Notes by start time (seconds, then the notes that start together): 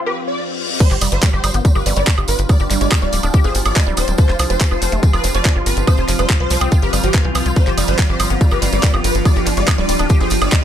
Already playing: F3 C4 F4 F5, reverse cymbal
0.06 G4 B4
0.28 D5
0.80 F3 G3 D4 F4 C5, kick, closed hi-hat, tambourine, crash
0.91 G1 G4, clap, tambourine
1.01 F1 G3, open hi-hat, tambourine, high woodblock
1.12 G1 G3 C5, closed hi-hat, tambourine
1.18 G5
1.23 G3, kick, clap, closed hi-hat, tambourine
1.33 G1 G4 C5
1.44 G1 G3, open hi-hat, tambourine, high woodblock
1.52 G1 B3 G4, closed hi-hat, tambourine
1.65 G3, kick, closed hi-hat, tambourine
1.75 G1 G4 B4, tambourine, high woodblock
1.86 G1 G3 B3, open hi-hat, tambourine
1.96 G1 G3 B3 D5, closed hi-hat, tambourine
2.07 G3, kick, clap, closed hi-hat, tambourine
2.18 G1 G4, high woodblock
2.28 G1 B4, open hi-hat, tambourine
2.39 G1, closed hi-hat, tambourine
2.49 G3 D5, kick, closed hi-hat, tambourine, high woodblock
2.59 G1 G4, tambourine
2.70 G1 G3, clap, open hi-hat, tambourine
2.81 G1 G3 G#3 D5, closed hi-hat, tambourine
2.92 kick, clap, closed hi-hat, tambourine, high woodblock
3.02 D1 G3 D5
3.13 D1 G3, open hi-hat, tambourine
3.23 D1 D4, closed hi-hat, tambourine, high woodblock
3.33 G4, kick, closed hi-hat, tambourine
3.44 G1 G#4 C5, tambourine
3.55 G1 F3, open hi-hat, tambourine
3.65 G1 F3 D5, closed hi-hat, tambourine, high woodblock
3.76 G#3, kick, clap, closed hi-hat, tambourine
3.87 D1 G3
3.97 D1 G3 C5, open hi-hat, tambourine, high woodblock
4.08 D1 G3, closed hi-hat, tambourine
4.18 F3 C4 C5, kick, closed hi-hat, tambourine
4.29 F1 F4, clap, tambourine
4.39 C2 F3, open hi-hat, tambourine, high woodblock
4.50 F1 F3 C5, closed hi-hat, tambourine
4.61 F3, kick, clap, closed hi-hat, tambourine
4.71 F1 F4 C5, high woodblock
4.82 F1 F3, open hi-hat, tambourine
4.92 F1 A3, closed hi-hat, tambourine
5.03 F3 F4, kick, closed hi-hat, tambourine
5.13 F1 F4 B4, tambourine, high woodblock
5.21 F1 F3 F5, open hi-hat, tambourine
5.34 F1 F3 D5, closed hi-hat, tambourine
5.45 F3, kick, clap, closed hi-hat, tambourine, high woodblock
5.56 G1 F4
5.66 G1 B4, open hi-hat, tambourine
5.77 G1, closed hi-hat, tambourine
5.87 F3 C5, kick, closed hi-hat, tambourine, high woodblock
5.97 F1 F4, tambourine
6.08 F1 F3, clap, open hi-hat, tambourine
6.19 F1 G3 C5, closed hi-hat, tambourine, high woodblock
6.30 kick, clap, closed hi-hat, tambourine
6.40 C2 F3 C5
6.50 C2 F3, open hi-hat, tambourine
6.61 C2 C4, closed hi-hat, tambourine, high woodblock
6.71 F4, kick, closed hi-hat, tambourine
6.82 G1 G4 B4, tambourine
6.93 G1 G3, open hi-hat, tambourine, high woodblock
7.04 G1 F3 G4, closed hi-hat, tambourine
7.14 E3, kick, clap, closed hi-hat, tambourine
7.25 C2 E3
7.35 C2 E3 F4, open hi-hat, tambourine, high woodblock
7.46 C2 F4, closed hi-hat, tambourine
7.56 G3 D4 C5, kick, closed hi-hat, tambourine
7.66 G1 G4, clap, tambourine
7.78 F1 G3 G5, open hi-hat, ride, tambourine, high woodblock
7.84 G1 G3 G4 C5, closed hi-hat, tambourine
7.98 G3, kick, clap, closed hi-hat, tambourine
8.09 G1 G4 C5
8.20 G1 G3, open hi-hat, ride, tambourine, high woodblock
8.30 G1 B3, closed hi-hat, tambourine
8.41 G3, kick, closed hi-hat, tambourine
8.51 G1 G4 B4, tambourine, high woodblock
8.62 G1 G3 B3, open hi-hat, ride, tambourine
8.72 G1 G3 B3 D5, closed hi-hat, tambourine
8.83 G3 B3, kick, clap, closed hi-hat, tambourine
8.94 G1 G4, high woodblock
9.04 G1 B4, open hi-hat, ride, tambourine
9.15 G1, closed hi-hat, tambourine
9.25 G3 D5, kick, closed hi-hat, tambourine, high woodblock
9.36 G1 G4, tambourine
9.46 G1 D4, clap, open hi-hat, ride, tambourine
9.57 G1 G#3 D4 D5, closed hi-hat, tambourine
9.68 kick, clap, closed hi-hat, tambourine, high woodblock
9.78 D1 G3 D5
9.89 D1 G3, open hi-hat, ride, tambourine
9.99 D1 D4, closed hi-hat, tambourine, high woodblock
10.09 G4, kick, closed hi-hat, tambourine
10.20 G1 G#4 C5, tambourine
10.30 G1, open hi-hat, ride, tambourine
10.42 G1 D4 D5, closed hi-hat, tambourine, high woodblock
10.52 G#3 D4, kick, clap, closed hi-hat, tambourine